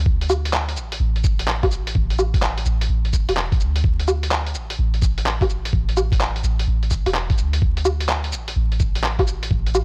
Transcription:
0.00 0.78 D2 loud
0.06 kick loud
0.21 closed hi-hat soft
0.30 cabasa medium
0.30 low woodblock medium
0.45 closed hi-hat medium
0.53 clap loud
0.69 closed hi-hat soft
0.76 0.99 A1 medium
0.76 cabasa medium
0.92 closed hi-hat medium
1.00 1.94 A1 medium
1.16 closed hi-hat soft
1.24 kick loud
1.24 cabasa medium
1.39 closed hi-hat medium
1.48 clap loud
1.63 kick loud
1.63 closed hi-hat soft
1.63 low woodblock medium
1.72 cabasa medium
1.87 closed hi-hat medium
1.95 2.65 A1 loud
1.95 kick loud
2.10 closed hi-hat soft
2.19 cabasa medium
2.19 low woodblock medium
2.34 kick loud
2.34 closed hi-hat medium
2.42 clap loud
2.58 closed hi-hat soft
2.65 2.88 A1 medium
2.65 cabasa medium
2.81 closed hi-hat medium
2.89 3.26 A1 medium
3.05 closed hi-hat soft
3.13 kick medium
3.13 cabasa medium
3.28 3.62 E1 medium
3.28 closed hi-hat medium
3.28 low woodblock soft
3.37 clap loud
3.52 kick loud
3.52 closed hi-hat soft
3.60 4.57 D2 loud
3.60 cabasa medium
3.76 closed hi-hat medium
3.84 kick loud
3.99 closed hi-hat soft
4.08 cabasa medium
4.08 low woodblock soft
4.23 closed hi-hat medium
4.31 clap loud
4.47 closed hi-hat soft
4.55 4.77 A1 medium
4.55 cabasa medium
4.70 closed hi-hat medium
4.79 5.72 A1 medium
4.94 closed hi-hat soft
5.02 kick loud
5.02 cabasa medium
5.18 closed hi-hat medium
5.26 clap loud
5.41 kick loud
5.41 closed hi-hat soft
5.41 low woodblock medium
5.50 cabasa medium
5.65 closed hi-hat medium
5.73 6.43 A1 loud
5.73 kick loud
5.89 closed hi-hat soft
5.97 cabasa medium
5.97 low woodblock soft
6.12 kick loud
6.12 closed hi-hat medium
6.21 clap loud
6.36 closed hi-hat soft
6.44 6.66 A1 medium
6.44 cabasa medium
6.59 closed hi-hat medium
6.67 7.04 A1 medium
6.83 closed hi-hat soft
6.91 kick medium
6.91 cabasa medium
7.06 7.40 E1 medium
7.06 closed hi-hat medium
7.06 low woodblock soft
7.14 clap loud
7.30 kick loud
7.30 closed hi-hat soft
7.38 8.34 D2 loud
7.38 cabasa medium
7.53 closed hi-hat medium
7.62 kick loud
7.77 closed hi-hat soft
7.85 cabasa medium
7.85 low woodblock medium
8.00 closed hi-hat medium
8.09 clap loud
8.24 closed hi-hat soft
8.32 8.55 A1 medium
8.32 cabasa medium
8.48 closed hi-hat medium
8.56 9.50 A1 medium
8.72 closed hi-hat soft
8.80 kick loud
8.80 cabasa medium
8.95 closed hi-hat medium
9.04 clap loud
9.19 kick loud
9.19 closed hi-hat soft
9.19 low woodblock medium
9.27 cabasa medium
9.43 closed hi-hat medium
9.51 9.84 A1 loud
9.51 kick loud
9.66 closed hi-hat soft
9.75 cabasa medium
9.75 low woodblock medium

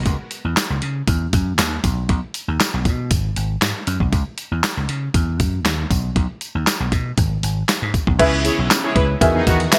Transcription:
0.06 0.16 C#2 loud
0.06 kick loud
0.06 closed hi-hat medium
0.06 tambourine soft
0.31 closed hi-hat medium
0.31 tambourine soft
0.45 0.54 E2 medium
0.57 snare loud
0.57 clap medium
0.57 closed hi-hat medium
0.57 tambourine medium
0.70 0.79 C#2 medium
0.82 1.01 C#3 loud
0.82 closed hi-hat medium
1.08 1.26 E2 medium
1.08 kick loud
1.08 closed hi-hat medium
1.08 tambourine soft
1.33 1.52 F#2 medium
1.33 kick loud
1.33 closed hi-hat medium
1.33 tambourine soft
1.58 1.77 D#2 medium
1.58 snare loud
1.58 clap medium
1.58 closed hi-hat medium
1.58 tambourine loud
1.84 2.03 B1 medium
1.84 kick medium
1.84 closed hi-hat medium
1.84 tambourine soft
2.09 2.19 B1 loud
2.09 kick loud
2.09 closed hi-hat medium
2.34 closed hi-hat medium
2.34 tambourine soft
2.48 2.57 D#2 medium
2.60 snare loud
2.60 clap medium
2.60 closed hi-hat medium
2.60 tambourine medium
2.74 2.87 B1 medium
2.85 3.12 B2 medium
2.85 kick loud
2.85 closed hi-hat medium
2.85 tambourine soft
3.11 3.30 G#1 medium
3.11 kick loud
3.11 closed hi-hat loud
3.11 tambourine medium
3.36 3.55 G#1 medium
3.36 closed hi-hat medium
3.36 tambourine medium
3.62 3.72 G#2 medium
3.62 snare loud
3.62 clap medium
3.62 closed hi-hat medium
3.62 tambourine medium
3.87 3.97 F#2 medium
3.87 closed hi-hat medium
3.87 tambourine medium
4.00 4.09 B1 medium
4.00 kick medium
4.13 4.23 C#2 loud
4.13 kick loud
4.13 closed hi-hat medium
4.13 tambourine soft
4.38 closed hi-hat medium
4.38 tambourine soft
4.52 4.60 E2 medium
4.64 snare loud
4.64 clap medium
4.64 closed hi-hat medium
4.64 tambourine medium
4.77 4.86 C#2 medium
4.89 5.08 C#3 medium
4.89 closed hi-hat medium
5.14 5.40 E2 medium
5.14 kick loud
5.14 closed hi-hat medium
5.14 tambourine soft
5.40 5.59 F#2 medium
5.40 kick loud
5.40 closed hi-hat medium
5.40 tambourine medium
5.65 5.84 D#2 medium
5.65 snare loud
5.65 clap medium
5.65 closed hi-hat medium
5.65 tambourine medium
5.91 6.09 B1 medium
5.91 kick medium
5.91 closed hi-hat medium
5.91 tambourine medium
6.16 6.26 B1 loud
6.16 kick loud
6.16 closed hi-hat medium
6.41 closed hi-hat medium
6.41 tambourine soft
6.55 6.64 D#2 medium
6.67 snare loud
6.67 clap medium
6.67 closed hi-hat medium
6.67 tambourine medium
6.80 6.89 B1 loud
6.92 7.11 B2 loud
6.92 kick medium
6.92 closed hi-hat medium
6.92 tambourine soft
7.18 7.37 G#1 medium
7.18 kick loud
7.18 closed hi-hat loud
7.18 tambourine soft
7.43 7.62 G#1 medium
7.43 closed hi-hat medium
7.43 tambourine medium
7.69 snare loud
7.69 clap medium
7.69 closed hi-hat medium
7.69 tambourine medium
7.82 7.91 G#2 loud
7.94 kick medium
7.94 closed hi-hat medium
7.94 tambourine medium
8.07 8.16 B1 medium
8.07 kick medium
8.19 8.48 C#2 loud
8.19 9.20 C#3 medium
8.19 9.20 B3 medium
8.19 9.00 C#4 loud
8.19 9.00 E4 medium
8.19 8.30 E4 loud
8.19 9.20 E4 loud
8.19 9.00 G#4 medium
8.19 8.30 G#4 loud
8.19 8.30 B4 loud
8.19 9.00 B4 medium
8.19 9.00 E5 loud
8.19 kick loud
8.19 closed hi-hat medium
8.19 crash loud
8.45 8.55 E4 medium
8.45 8.55 G#4 medium
8.45 8.56 C#5 medium
8.45 closed hi-hat medium
8.45 tambourine medium
8.59 8.67 B1 medium
8.71 snare loud
8.71 clap loud
8.71 closed hi-hat medium
8.71 tambourine medium
8.83 8.93 E4 medium
8.83 8.93 G#4 medium
8.83 8.93 C#5 medium
8.95 9.15 C#2 medium
8.95 9.06 E4 medium
8.95 9.06 G#4 medium
8.95 9.06 B4 medium
8.95 kick loud
8.95 closed hi-hat medium
9.21 9.40 E2 loud
9.21 9.62 D#3 loud
9.21 9.79 D#3 medium
9.21 9.79 B3 medium
9.21 9.62 F#4 medium
9.21 9.79 F#4 medium
9.21 9.62 G#4 loud
9.21 9.79 G#4 medium
9.21 9.62 B4 medium
9.21 9.62 E5 loud
9.21 kick loud
9.21 closed hi-hat loud
9.21 tambourine medium
9.35 9.44 B3 medium
9.35 9.44 D#4 medium
9.35 9.44 G#4 loud
9.46 9.66 E2 medium
9.46 9.57 B3 medium
9.46 9.57 D#4 medium
9.46 9.57 F#4 loud
9.46 kick loud
9.46 closed hi-hat medium
9.46 tambourine medium
9.60 closed hi-hat medium
9.71 9.79 D#4 medium
9.71 9.79 F#4 medium
9.71 9.79 G#4 medium
9.71 9.79 B4 medium
9.71 9.79 E5 medium
9.71 snare loud
9.71 clap loud
9.71 closed hi-hat medium
9.71 tambourine loud

